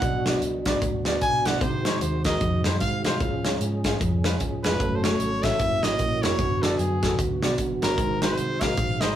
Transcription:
Already playing: F#4 F#5
0.02 B1 B2 F#3 B3 D4, kick, closed hi-hat
0.26 B3 D4 F#4 D5, snare, closed hi-hat
0.41 C#2, closed hi-hat
0.66 B3 D4 F#4 D5, kick, snare, closed hi-hat
0.82 D2, kick, closed hi-hat
1.05 B3 D4 F#4 D5, snare, closed hi-hat
1.21 B1 G#5, kick, closed hi-hat
1.45 B1 B3 D4 F#4 D5 F#5, snare, closed hi-hat
1.60 C2 C3 D#3 G#3 C4 C5, kick, closed hi-hat
1.84 G#3 D#4 F#4 C5 C#5, snare, closed hi-hat
2.01 D#2 C5, closed hi-hat
2.25 G#3 D#4 F#4 A#4 D#5, kick, snare, closed hi-hat
2.41 F2, kick, closed hi-hat
2.64 F#2 G#3 D#4 F#4 C5, snare, closed hi-hat
2.80 G#2 F5, kick, closed hi-hat
3.05 C2 G#3 D#4 F#4 C5 F5, snare, closed hi-hat
3.20 C#2 C#3 F3 C#4 G#4, kick, closed hi-hat
3.44 G#3 C#4 F4 C#5, snare, closed hi-hat
3.60 G#2, closed hi-hat
3.84 G#3 C#4 F4 G#4, kick, snare, closed hi-hat
4.01 F2, kick, closed hi-hat
4.24 G#3 C#4 F4 B4, snare, closed hi-hat
4.40 C#2, kick, closed hi-hat
4.64 F1 G#3 C#4 F4 G#4 B4, snare, closed hi-hat
4.80 F#1 F#3 A3 A4, kick, closed hi-hat
4.96 C5
5.03 A3 C#4 F#4 C#5, snare, closed hi-hat
5.19 G#1, closed hi-hat
5.43 A1 A3 C#4 F#4 C#5 E5, kick, snare, closed hi-hat
5.59 F#1 E3 A#3 F#4, kick, closed hi-hat
5.83 G#1 A#3 E4 F#4 C#5 D#5, snare, closed hi-hat
5.99 A#1, kick, closed hi-hat
6.22 F1 A#3 E4 F#4 C#5, snare, closed hi-hat
6.39 F#1 D3 F#3 B3 F#4, kick, closed hi-hat
6.62 B3 D4 F#4 A4 D5, snare, closed hi-hat
6.78 F#2 G#4, closed hi-hat
7.02 B3 D4 F#4 A4, kick, snare, closed hi-hat
7.19 D2, kick, closed hi-hat
7.42 B1 B3 D4 F#4 D5, snare, closed hi-hat
7.58 G#1, kick, closed hi-hat
7.82 G1 B3 D4 F#4 A#4 C#5, snare, closed hi-hat
7.98 G#1 G#2 D#3 G#3 C4, kick, closed hi-hat
8.21 G#3 D#4 F#4 C5, snare, closed hi-hat
8.37 C2, closed hi-hat
8.61 G#3 D#4 F#4 A#4 F5, kick, snare, closed hi-hat
8.77 A#1, kick, closed hi-hat
9.01 G#1 G#3 D#4 F#4 C5 D#5, snare, closed hi-hat

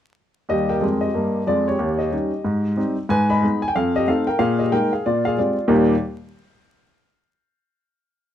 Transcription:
0.49 D#2 G3 G4 D#5
0.69 A#4 G5
0.81 F2 G#3
1.01 G4 D#5
1.14 G2 A#3
1.47 F2 G#3 F4 D5
1.68 G4 C#5
1.79 D#2
1.99 G4 D#5
2.11 G3 C#4 D#4
2.44 G#2
2.77 G3 C4 D#4
3.09 G#2 B4 G#5
3.30 D#5 B5
3.43 G#3 B3 D#4
3.62 G#5
3.68 G5
3.75 F2 A4 F5
3.96 G4 D#5
4.07 A3 C4 D#4 A4 F5
4.27 A#4 G5
4.39 A#2 G#4 F5
4.59 G4 D#5
4.71 G#3 A#3 D#4 A#4 G5
4.93 G#4 F5
5.06 A#2 F4 D5
5.25 G#4 F5
5.37 G#3 C4 F4 G4 D5
5.68 D#2 A#2 G3 A#3 D#4 G4 D#5

